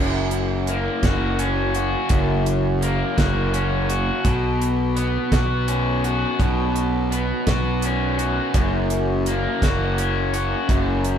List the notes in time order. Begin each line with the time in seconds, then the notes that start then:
Already playing: F#1 F#2
0.31 closed hi-hat
0.67 A#3, closed hi-hat
1.02 F#1 F#4, kick, snare, closed hi-hat
1.39 C#4, closed hi-hat
1.74 F#4, closed hi-hat
2.09 F#1 F#2, kick, closed hi-hat
2.46 closed hi-hat
2.82 A#3, closed hi-hat
3.17 F#1 F#4, kick, snare, closed hi-hat
3.54 C#4, closed hi-hat
3.89 F#4, closed hi-hat
4.25 B1 B2, kick, closed hi-hat
4.62 closed hi-hat
4.96 B3, closed hi-hat
5.32 B1 F#4, kick, snare, closed hi-hat
5.68 C#4, closed hi-hat
6.04 F#4, closed hi-hat
6.40 B1 B2, kick, closed hi-hat
6.76 closed hi-hat
7.11 B3, closed hi-hat
7.47 B1 F#4, kick, snare, closed hi-hat
7.82 C#4, closed hi-hat
8.19 F#4, closed hi-hat
8.54 F#1 F#2, kick, closed hi-hat
8.90 closed hi-hat
9.26 A#3, closed hi-hat
9.62 F#1 F#4, kick, snare, closed hi-hat
9.98 C#4, closed hi-hat
10.34 F#4, closed hi-hat
10.68 F#1 F#2, kick, closed hi-hat
11.04 closed hi-hat